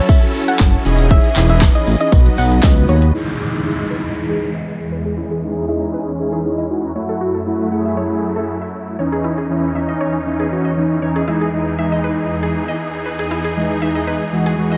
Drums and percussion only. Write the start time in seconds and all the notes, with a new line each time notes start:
0.09 kick, tambourine, shaker
0.23 closed hi-hat, shaker
0.34 open hi-hat, tambourine, shaker
0.48 closed hi-hat, shaker
0.60 kick, snare, clap, tambourine, shaker
0.73 closed hi-hat, shaker
0.85 open hi-hat, tambourine, shaker
0.99 closed hi-hat, shaker
1.11 kick, shaker
1.24 closed hi-hat, shaker
1.36 clap, open hi-hat, tambourine, shaker
1.50 closed hi-hat, shaker
1.62 kick, snare, clap, tambourine, shaker
1.75 closed hi-hat, shaker
1.87 open hi-hat, tambourine, shaker
2.01 closed hi-hat, shaker
2.12 kick, tambourine, shaker
2.26 closed hi-hat, shaker
2.38 open hi-hat, tambourine, shaker
2.52 closed hi-hat, shaker
2.63 kick, snare, clap, tambourine, shaker
2.77 closed hi-hat, shaker
2.89 open hi-hat, shaker
3.02 closed hi-hat, shaker